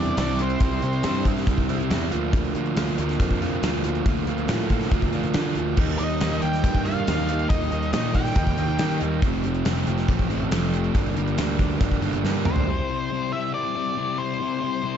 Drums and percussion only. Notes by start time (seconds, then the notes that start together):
0.08 shaker
0.17 snare, closed hi-hat, shaker
0.39 closed hi-hat, shaker
0.50 closed hi-hat, shaker
0.60 kick, closed hi-hat, shaker
0.71 closed hi-hat
0.82 closed hi-hat, shaker
0.93 closed hi-hat, shaker
1.03 snare, closed hi-hat, shaker
1.25 kick, closed hi-hat, shaker
1.36 snare, closed hi-hat
1.47 kick, closed hi-hat, shaker
1.58 kick, closed hi-hat
1.69 closed hi-hat, shaker
1.80 closed hi-hat
1.90 snare, closed hi-hat, shaker
2.12 closed hi-hat, shaker
2.23 shaker
2.33 kick, closed hi-hat, shaker
2.45 closed hi-hat
2.55 closed hi-hat, shaker
2.66 closed hi-hat, shaker
2.77 snare, closed hi-hat, shaker
2.87 closed hi-hat
2.98 closed hi-hat, shaker
3.09 snare, closed hi-hat
3.20 kick, closed hi-hat, shaker
3.31 kick
3.42 closed hi-hat, shaker
3.53 shaker
3.63 snare, closed hi-hat, shaker
3.84 closed hi-hat, shaker
3.95 closed hi-hat, shaker
4.06 kick, closed hi-hat, shaker
4.17 closed hi-hat
4.27 closed hi-hat, shaker
4.38 closed hi-hat
4.48 snare, closed hi-hat, shaker
4.70 kick, closed hi-hat, shaker
4.81 snare, closed hi-hat
4.91 kick, closed hi-hat, shaker
5.02 kick, closed hi-hat
5.13 closed hi-hat, shaker
5.24 closed hi-hat
5.34 snare, closed hi-hat, shaker
5.55 closed hi-hat, shaker
5.68 shaker
5.77 kick, crash, shaker
5.88 closed hi-hat
5.99 closed hi-hat, shaker
6.10 closed hi-hat, shaker
6.21 snare, closed hi-hat, shaker
6.31 closed hi-hat
6.42 closed hi-hat, shaker
6.53 snare, closed hi-hat
6.64 kick, closed hi-hat, shaker
6.75 kick
6.86 closed hi-hat, shaker
7.07 snare, closed hi-hat, shaker
7.29 closed hi-hat, shaker
7.39 closed hi-hat, shaker
7.50 kick, closed hi-hat, shaker
7.61 closed hi-hat
7.72 closed hi-hat, shaker
7.83 closed hi-hat, shaker
7.93 snare, closed hi-hat
8.15 kick, closed hi-hat, shaker
8.25 snare, closed hi-hat
8.36 kick, closed hi-hat, shaker
8.47 kick, closed hi-hat
8.58 closed hi-hat, shaker
8.68 closed hi-hat
8.79 snare, closed hi-hat, shaker
9.01 closed hi-hat, shaker
9.12 shaker
9.22 kick, closed hi-hat, shaker
9.33 closed hi-hat
9.44 closed hi-hat, shaker
9.55 closed hi-hat
9.65 snare, closed hi-hat, shaker
9.76 closed hi-hat
9.87 closed hi-hat, shaker
9.98 snare, closed hi-hat
10.08 kick, closed hi-hat, shaker
10.19 kick
10.30 closed hi-hat, shaker
10.41 shaker
10.51 snare, closed hi-hat, shaker
10.74 closed hi-hat, shaker
10.84 closed hi-hat, shaker
10.95 kick, closed hi-hat, shaker
11.06 closed hi-hat
11.17 closed hi-hat
11.28 closed hi-hat, shaker
11.38 snare, closed hi-hat, shaker
11.59 kick, closed hi-hat, shaker
11.70 closed hi-hat, shaker
11.81 kick, closed hi-hat, shaker
11.91 kick, closed hi-hat
12.02 closed hi-hat
12.13 closed hi-hat
12.25 snare, shaker
12.45 mid tom, shaker
12.56 floor tom